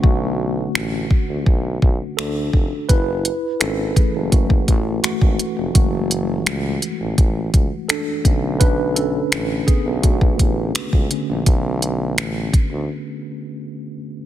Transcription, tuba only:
\new Staff \with { instrumentName = "Tuba" } { \clef bass \time 4/4 \key b \dorian \tempo 4 = 84 b,,4 a,,8 r16 d,16 b,,8 b,,16 r16 d,8 eis,,16 r16 | fis,,8 r8 gis,,8 r16 fis,,8. a,,8 gis,,16 gis,,16 r16 eis,,16 | fis,,4 cis,8 r16 a,,16 a,,8 cis,16 r8. b,,8~ | b,,4 a,,8 r16 b,,8. a,,8 cis,16 cis,16 r16 ais,,16 |
b,,4 a,,8 r16 d,16 r2 | }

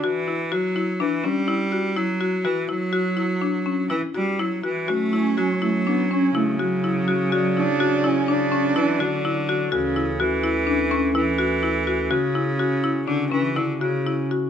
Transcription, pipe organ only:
<<
  \new Staff \with { instrumentName = "Pipe organ" } { \time 5/4 \key d \major \tempo 4 = 124 r1 r4 | r1 r4 | cis'1~ cis'4 | d''1~ d''4 |
cis'1~ cis'4~ | cis'1~ cis'4 | }
  \new Staff \with { instrumentName = "Pipe organ" } { \clef bass \time 5/4 \key d \major r1 r4 | r1 r4 | <fis fis'>1~ <fis fis'>4~ | <fis fis'>1~ <fis fis'>4 |
<d, e a'>1~ <d, e a'>4 | <cis fis'>1~ <cis fis'>4 | }
>>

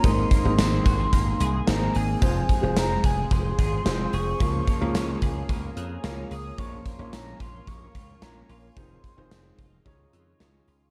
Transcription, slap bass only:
\new Staff \with { instrumentName = "Slap bass" } { \clef bass \time 4/4 \key des \major \tempo 4 = 110 aes,,8 r16 aes,,16 aes,,8 aes,,8 aes,,8 c,8 aes,,8 aes,,8 | f,,8 r16 f,,16 f,,8 f,,8 f,,8 aes,,8 f,,8 f,,8 | des,8 r16 des,16 des,8 des,8 des,8 f,8 des,8 des,8 | bes,,8 r16 bes,,16 bes,,8 bes,,8 bes,,8 des,8 bes,,8 bes,,8 |
f,,8 r16 f,,16 f,,8 f,,8 des,8 f,8 des,8 des,8 | }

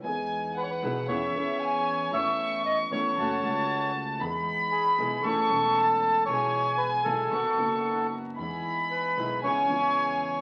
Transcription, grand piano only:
\new Staff \with { instrumentName = "Grand piano" } { \clef bass \time 4/4 \key e \major \tempo 4 = 115 <e, e b dis' gis'>4. <b,, b, e b dis' gis'>8 <e, e b cis' gis'>8 <e, e b cis' gis'>4. | <e, e a cis' a'>4. <e, e a cis' a'>8 <fis, fis a cis' a'>8 <cis, cis fis a cis' a'>4. | <e, e b dis' gis'>4. <b,, b, e b dis' gis'>8 <a,, a, e a cis' gis'>8 <e,, e, e a cis' a'>4. | <b,, b, e gis b gis'>4. <b,, b, e gis b gis'>8 <b,, b, dis fis b fis'>8 <fis,, fis, dis fis b fis'>4. |
<e, e gis b dis' e'>4. <b,, b, dis gis b e'>8 <e, cis e gis e'>8 <e, cis e gis e'>4. | }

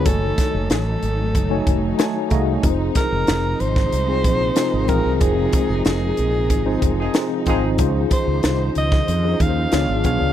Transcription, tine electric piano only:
\new Staff \with { instrumentName = "Tine electric piano" } { \time 4/4 \key f \phrygian \tempo 4 = 93 <a ees' ges' des'' aes''>4.~ <a ees' ges' des'' aes''>16 r8 <a ees' ges' des'' aes''>8. <a ees' ges' des'' aes'' a''>8 <a ees' ges' aes' ees'' f''>8 | <c' ees' f' aes' bes' c''>4.~ <c' ees' f' aes' bes' c''>16 r8 <c' ees' f' aes' c''>8. <c' ees' f' aes' bes'>8 <c' ees' f' aes' bes'>8 | <c' ees' f' ges' aes' c''>4.~ <c' ees' f' ges' aes' c''>16 r8 <c' ees' f' aes' c''>8. <c' ees' f' aes' c''>8 <c' ees' f' aes' c''>8 | <des' ees' f' aes' c''>4.~ <des' ees' f' aes' c''>16 r8 <des' ees' f' aes' c''>8. <ces' d' f' aes' des''>8 <ces' d' f' aes' des''>8 | }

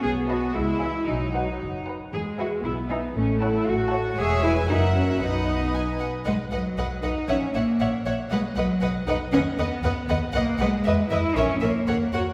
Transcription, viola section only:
\new Staff \with { instrumentName = "Viola section" } { \time 2/4 \key fis \dorian \tempo 4 = 117 b4 gis8 e8 | fis4. r8 | gis4 b4 | a2 |
\key b \major gis4 fis4 | dis'4. r8 | b'8 b'8 b'8 b'8 | cis''8 cis''8 cis''8 cis''8 |
b'8 b'8 b'8 b'8 | b'8 b'8 b'8 b'8 | b'8 b'8 b'8 b'8 | ais'8 ais'8 ais'8 ais'8 | }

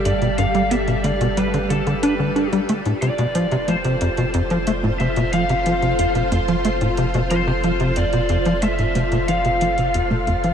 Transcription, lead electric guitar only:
\new Staff \with { instrumentName = "Lead electric guitar" } { \time 4/4 \key f \lydian \tempo 4 = 91 d''8 f''8 e''8 d''8 b'8 a'8 b'8. r16 | r8 d''4 c''2 e''8 | f''4. r4. c''4 | d''4 e''4 f''2 | }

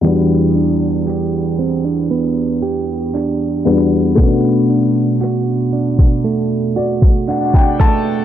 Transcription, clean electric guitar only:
\new Staff \with { instrumentName = "Clean electric guitar" } { \time 4/4 \key e \minor \tempo 4 = 58 <e g'>8 d'8 g'8 c'16 d'16 b8 g'8 d'8 b8 | <b, fis'>8 d'8 fis'8 d'8 a8 fis'8 d'8 a8 | }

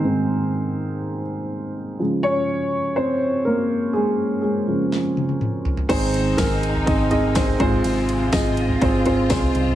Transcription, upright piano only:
<<
  \new Staff \with { instrumentName = "Upright piano" } { \time 4/4 \key aes \major \tempo 4 = 123 <ees ees'>2~ <ees ees'>8 r4. | r8 <des' des''>4. <c' c''>4 <bes bes'>4 | <aes aes'>4 <aes aes'>4 r2 | <c' ees' aes' c''>4 <c' ees' aes' bes'>4 <c' ees' aes' ees''>8 <c' ees' aes' ees''>8 <c' ees' aes' c''>8 <c' f' aes' c''>8~ |
<c' f' aes' c''>4 <c' f' aes' ees''>4 <c' f' aes' c''>8 <c' f' aes' c''>8 <c' f' aes' c''>4 | }
  \new Staff \with { instrumentName = "Upright piano" } { \clef bass \time 4/4 \key aes \major <aes, ees c'>1 | <des f aes>1 | r4. <des f aes>4. r4 | <aes, ees>4. r2 <aes, aes>8~ |
<aes, aes>4 r2. | }
>>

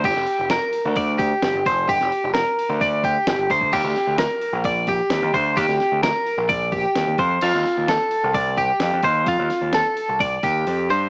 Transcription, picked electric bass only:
\new Staff \with { instrumentName = "Picked electric bass" } { \clef bass \time 4/4 \key g \minor \tempo 4 = 130 g,,16 f,,16 r16 f,,8 r8 d,4~ d,16 g,,16 g,,16 f,,8 | g,,16 f,,16 r16 f,,8 r8 d,4~ d,16 g,,16 g,,16 d,8 | ees,16 d,16 r16 d,8 r8 bes,,4~ bes,,16 ees,16 ees,16 d,8 | ees,16 d,16 r16 d,8 r8 bes,,4~ bes,,16 ees,16 ees,16 f,8 |
f,16 ees,16 r16 ees,8 r8 c,4~ c,16 f,16 f,16 ees,8 | f,16 ees,16 r16 ees,8 r8 c,8. ees,8 f,8 g,8 | }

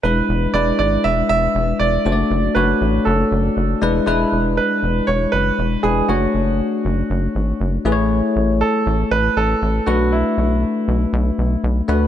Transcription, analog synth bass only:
\new Staff \with { instrumentName = "Analog synth bass" } { \clef bass \time 4/4 \key e \mixolydian \tempo 4 = 119 e,,8 e,,8 e,,8 gis,,8 e,,8 e,,8 e,,8 e,,8 | fis,,8 fis,,8 fis,,8 a,,8 fis,,8 fis,,8 fis,,8 e,,8 | e,,8 e,,8. r16 e,,8 e,,8 fis,,8 e,,8 e,,8 | fis,,8 fis,,8. r16 fis,,8 fis,,8 gis,,8 fis,,8 a,,8~ |
a,,8 a,,8. r16 a,,8 a,,8 a,,8 a,,8 b,,8~ | b,,8 b,,8. r16 b,,8 b,,8 b,,8 b,,8 d,8 | }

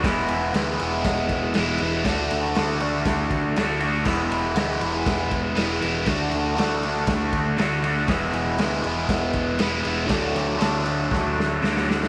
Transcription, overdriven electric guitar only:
\new Staff \with { instrumentName = "Overdriven electric guitar" } { \time 4/4 \key e \mixolydian \tempo 4 = 119 <e gis b e'>4 <e gis b e'>8 <gis b e'>4. <e gis b e'>8 <gis b e'>8 | <d a d' fis'>4 <d a d' fis'>8 <a d' fis'>4. <d a d' fis'>8 <a d' fis'>8 | <e gis b e'>4 <e gis b e'>8 <gis b e'>4. <e gis b e'>8 <gis b e'>8 | <d a d' fis'>4 <d a d' fis'>8 <a d' fis'>4. <d a d' fis'>8 <a d' fis'>8 |
<e gis b e'>4 <e gis b e'>8 <gis b e'>4. <e gis b e'>8 <gis b e'>8 | <d fis a d'>4 <d fis a d'>8 <fis a d'>4. <d fis a d'>8 <fis a d'>8 | }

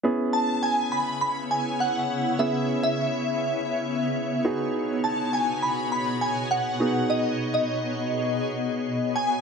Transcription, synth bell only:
\new Staff \with { instrumentName = "Synth bell" } { \time 4/4 \key cis \minor \tempo 4 = 102 r8 a''8 gis''8 b''8 b''8 gis''8 fis''4 | e''8. e''2~ e''8. r8 | r8 a''8 gis''8 b''8 b''8 gis''8 fis''4 | dis''8. dis''2~ dis''8. gis''8 | }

